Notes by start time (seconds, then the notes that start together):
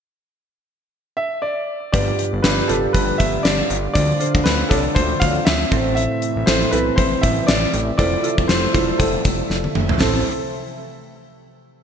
1.17 E5
1.42 D5
1.92 G1 G2 D3 G3 B3 D4 F4 G4 B4 D5, kick, closed hi-hat
2.19 closed hi-hat
2.33 G1
2.42 G1 D4 F4 G4 B4 D5, snare, closed hi-hat
2.68 F1 D4 F4 G4 A4 B4, closed hi-hat
2.93 G1 B4, kick, closed hi-hat
3.18 G1 E5, kick, closed hi-hat
3.43 G1 D5, snare, closed hi-hat
3.70 G1, closed hi-hat
3.94 D2 D3 A3 C4 D4 F4 A4 C5 D5, kick, closed hi-hat
4.20 D4 F4 A4 C5, closed hi-hat
4.35 D2, kick
4.44 D2 B4, snare, closed hi-hat
4.69 C2 D4 F4 A4 C#5, kick, closed hi-hat
4.78 D5
4.95 D2 C5, kick, closed hi-hat
5.20 D2 F5, kick, closed hi-hat
5.45 D2 E5, snare, closed hi-hat
5.71 A1 A2 C3 E3 C4 E4 A4 C5 E5, kick, closed hi-hat
5.95 E5, closed hi-hat
6.22 closed hi-hat
6.36 A1
6.46 A1 C4 E4 A4 C5, snare, closed hi-hat
6.71 B1 C4 E4 A4 B4, closed hi-hat
6.96 A1 C5, kick, closed hi-hat
7.21 A1 E5, kick, closed hi-hat
7.47 A1 D5, snare, closed hi-hat
7.74 A1, closed hi-hat
7.98 F1 F3 A3 E4 F4 A4 C5 D5, kick, closed hi-hat
8.23 E4 F4 A4 D5, closed hi-hat
8.38 F1, kick
8.48 F1 C5, snare, closed hi-hat
8.74 E1 E4 F4 A4 C5, kick, closed hi-hat
8.98 F1 A4, kick, closed hi-hat
9.25 F1, kick, closed hi-hat
9.50 F1, snare
9.64 high tom
9.75 F1, mid tom
9.89 floor tom
10.00 A1 C3 E3 A3 C4 E4 A4 C5, snare, floor tom, open hi-hat